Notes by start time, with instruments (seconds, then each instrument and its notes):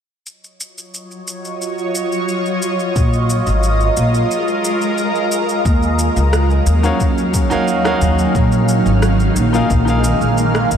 0.26 ambient pad F#3 F4 C#5 D#5, shaker
0.44 shaker
0.60 shaker
0.78 shaker
0.94 shaker
1.11 shaker
1.27 shaker
1.45 shaker
1.62 shaker
1.78 shaker
1.95 shaker
2.12 shaker
2.28 shaker
2.46 shaker
2.62 shaker
2.79 shaker
2.96 upright bass A#1, ambient pad G#3 A#4, kick, shaker
3.13 shaker
3.30 shaker
3.47 upright bass G#1, shaker
3.63 shaker
3.80 shaker
3.97 upright bass A#1, shaker
4.14 shaker
4.31 shaker
4.48 shaker
4.64 shaker
4.81 shaker
4.98 shaker
5.15 shaker
5.32 shaker
5.49 shaker
5.65 upright bass D#2, ambient pad D#3 F#3 C#4 F5, kick, shaker
5.83 shaker
5.99 shaker
6.16 upright bass C#2, shaker
6.33 cross-stick, shaker
6.50 shaker
6.66 upright bass D#2, shaker
6.83 grand piano D#4 F#4 A#4 C#5 F5, shaker
7.00 upright bass D#2, kick, shaker
7.18 shaker
7.34 kick, shaker
7.50 upright bass D#2, grand piano D#4 F#4 A#4 C#5 F5, shaker
7.68 shaker
7.84 grand piano D#4 F#4 A#4 C#5 F5, cross-stick, shaker
8.01 upright bass D#2, kick, shaker
8.19 shaker
8.34 upright bass A#1, ambient pad G#3 A#3, kick, shaker
8.52 shaker
8.68 shaker
8.86 upright bass G#1, shaker
9.02 cross-stick, shaker
9.20 shaker
9.36 upright bass A#1, shaker
9.53 grand piano D#4 F4 G#4 A#4 F5, shaker
9.70 upright bass A#1, kick, shaker
9.85 grand piano D#4 F4 G#4 A#4, shaker
9.90 grand piano F5
10.04 shaker
10.21 upright bass A#1, shaker
10.38 shaker
10.55 cross-stick, shaker
10.71 upright bass A#1, kick, shaker